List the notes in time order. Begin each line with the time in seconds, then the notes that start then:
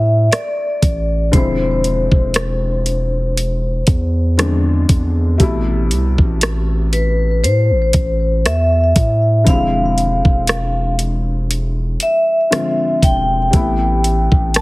Already playing: A2 C3 G3 A3 B3 E4 E5
0.32 D5, cross-stick, closed hi-hat
0.82 A1, kick, closed hi-hat
1.32 E1 D3 F3 G#3 C4 C5, kick, closed hi-hat
1.37 E4
1.84 closed hi-hat
2.12 E1, kick
2.34 cross-stick, closed hi-hat
2.86 closed hi-hat
3.37 closed hi-hat
3.87 E2, kick, closed hi-hat
4.38 D3 F3 G#3 C4 D4, cross-stick, closed hi-hat
4.89 E2, kick, closed hi-hat
5.38 A1 B2 C3 G3 A3, kick, closed hi-hat
5.43 E4
5.91 C2, closed hi-hat
6.18 A1, kick
6.41 cross-stick, closed hi-hat
6.93 B4, closed hi-hat
7.43 A2 C5, closed hi-hat
7.71 A1
7.93 A1, kick, closed hi-hat
8.45 E2 E5, cross-stick, closed hi-hat
8.96 A2, kick, closed hi-hat
9.44 E1 D3 F3 G3 F5, kick, closed hi-hat
9.48 C4 E4
9.53 G#3
9.98 closed hi-hat
10.25 E1, kick
10.47 cross-stick, closed hi-hat
10.99 closed hi-hat
11.51 closed hi-hat
12.00 E5, closed hi-hat
12.51 D3 F3 G#3 C4 F4, cross-stick, closed hi-hat
13.03 E1 G5, kick, closed hi-hat
13.51 A1 C3 G3 A3, kick, closed hi-hat
13.55 B3 E4
14.04 closed hi-hat
14.32 A1, kick
14.54 A5, cross-stick, closed hi-hat